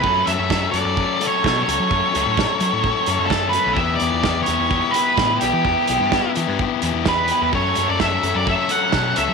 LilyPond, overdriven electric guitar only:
\new Staff \with { instrumentName = "Overdriven electric guitar" } { \time 4/4 \key fis \phrygian \tempo 4 = 128 <fis a cis' a'>8 <fis a cis' a'>8 <fis a cis' a'>8 <fis a cis' a'>8 <fis a cis' a'>8 <fis a cis' a'>8 <fis a cis' a'>8 <fis a cis' a'>8 | <fis a cis' a'>8 <fis a cis' a'>8 <fis a cis' a'>8 <fis a cis' a'>8 <fis a cis' a'>8 <fis a cis' a'>8 <fis a cis' a'>8 <fis a cis' a'>8 | <e b e' g'>8 <e b e' g'>8 <e b e' g'>8 <e b e' g'>8 <e b e' g'>8 <e b e' g'>8 <e b e' g'>8 <e b e' g'>8 | <e b e' g'>8 <e b e' g'>8 <e b e' g'>8 <e b e' g'>8 <e b e' g'>8 <e b e' g'>8 <e b e' g'>8 <e b e' g'>8 |
<fis a cis' a'>8 <fis a cis' a'>8 <fis a cis' a'>8 <fis a cis' a'>8 <fis a cis' a'>8 <fis a cis' a'>8 <fis a cis' a'>8 <fis a cis' a'>8 | }